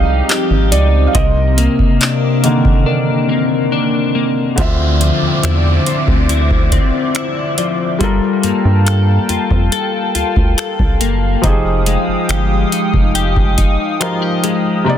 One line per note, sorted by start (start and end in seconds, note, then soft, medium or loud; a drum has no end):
0.00 0.22 C2 loud
0.00 1.12 F3 medium
0.00 1.15 F3 medium
0.00 1.17 G3 medium
0.00 1.17 G#3 medium
0.00 1.12 C4 medium
0.00 0.71 D#4 medium
0.00 1.12 D#4 medium
0.00 1.17 D#4 medium
0.00 0.29 G4 medium
0.00 1.12 G4 loud
0.00 0.72 D5 loud
0.00 1.15 D#5 medium
0.00 0.75 F5 loud
0.29 3.79 G4 medium
0.29 clap loud
0.29 closed hi-hat medium
0.51 0.73 G#1 medium
0.72 1.08 C#2 medium
0.72 2.00 D#4 medium
0.72 1.09 D5 medium
0.72 closed hi-hat medium
1.07 1.15 F5 medium
1.15 1.68 C2 loud
1.15 4.57 C3 medium
1.15 4.55 C3 medium
1.15 4.55 A#3 medium
1.15 4.55 C4 medium
1.15 4.55 A#4 loud
1.15 3.68 D#5 medium
1.15 kick loud
1.15 closed hi-hat medium
1.57 2.42 A#3 medium
1.57 closed hi-hat medium
1.79 kick medium
2.00 2.86 D4 medium
2.00 clap loud
2.00 closed hi-hat medium
2.43 3.69 D3 medium
2.43 3.68 D#3 medium
2.43 3.28 A#3 medium
2.43 3.69 A#3 medium
2.43 closed hi-hat medium
2.65 kick medium
2.86 3.72 D4 medium
2.86 4.97 A#4 medium
3.29 4.14 A#3 medium
3.72 5.43 D4 medium
4.15 4.66 A#3 medium
4.56 5.11 D2 loud
4.56 7.96 D3 medium
4.56 8.08 D3 medium
4.56 7.97 C4 medium
4.56 7.97 F4 medium
4.56 7.97 C5 medium
4.56 7.97 D5 medium
4.56 7.97 E5 medium
4.56 7.97 D6 medium
4.56 kick loud
4.56 closed hi-hat medium
4.56 downlifter medium
4.61 7.98 E5 medium
5.01 7.57 F3 medium
5.01 7.64 C5 medium
5.01 closed hi-hat medium
5.22 5.31 E2 soft
5.28 7.88 G5 medium
5.43 5.79 E2 loud
5.43 6.28 E4 medium
5.43 finger snap loud
5.43 closed hi-hat medium
5.86 6.71 C4 medium
5.86 closed hi-hat medium
6.08 6.79 D2 medium
6.08 kick medium
6.29 7.14 E4 medium
6.29 closed hi-hat medium
6.51 kick medium
6.72 8.09 C4 medium
6.72 kick medium
6.72 closed hi-hat medium
7.15 8.09 E4 medium
7.15 finger snap loud
7.15 closed hi-hat medium
7.58 8.00 F3 medium
7.58 8.40 D5 medium
7.58 closed hi-hat medium
7.99 8.18 G1 loud
7.99 11.39 G3 medium
7.99 11.43 G3 medium
7.99 11.40 F4 medium
7.99 11.40 A4 medium
7.99 14.83 F5 medium
7.99 11.40 G5 medium
7.99 11.40 A5 medium
7.99 kick loud
7.99 closed hi-hat medium
8.04 11.41 A#4 medium
8.43 8.52 G2 soft
8.43 10.99 A#3 medium
8.43 closed hi-hat medium
8.65 9.18 G2 loud
8.86 9.71 A4 medium
8.86 finger snap loud
8.86 closed hi-hat medium
9.29 9.38 F2 soft
9.29 10.14 F4 medium
9.29 closed hi-hat medium
9.51 9.69 F2 loud
9.51 kick medium
9.72 10.57 A4 medium
9.72 closed hi-hat medium
10.15 10.24 D2 soft
10.15 12.32 F4 medium
10.15 closed hi-hat medium
10.36 10.54 D2 medium
10.36 kick medium
10.58 11.52 A4 medium
10.58 finger snap loud
10.58 closed hi-hat medium
10.79 11.02 C2 medium
10.79 kick medium
11.01 11.36 F#1 loud
11.01 11.52 A#3 medium
11.01 closed hi-hat medium
11.42 11.97 F1 loud
11.42 13.96 F3 medium
11.42 14.86 F3 medium
11.42 14.83 G#3 medium
11.42 13.97 D#4 medium
11.42 13.97 G4 medium
11.42 14.83 G5 medium
11.42 14.83 D#6 medium
11.42 kick loud
11.42 closed hi-hat medium
11.47 13.98 G#4 medium
11.86 14.42 G#3 medium
11.86 closed hi-hat medium
12.08 12.17 G1 soft
12.29 12.65 G1 loud
12.29 13.15 G4 medium
12.29 finger snap loud
12.29 closed hi-hat medium
12.72 13.57 D#4 medium
12.72 closed hi-hat medium
12.94 13.65 F1 medium
12.94 kick medium
13.15 14.00 G4 medium
13.15 closed hi-hat medium
13.37 kick loud
13.58 14.98 D#4 medium
13.58 kick medium
13.58 closed hi-hat medium
14.00 14.86 F3 medium
14.00 14.86 D#4 medium
14.00 14.22 F4 medium
14.00 14.87 G4 medium
14.00 14.88 A#4 medium
14.00 finger snap loud
14.00 closed hi-hat medium
14.22 14.95 G4 medium
14.44 14.95 G#3 medium
14.44 closed hi-hat medium
14.84 14.98 C3 medium
14.84 14.98 A#3 medium
14.84 14.98 D#4 medium
14.84 14.98 C5 medium
14.84 14.98 D5 medium
14.84 14.98 A#5 medium
14.84 14.98 D6 loud
14.89 14.98 D5 medium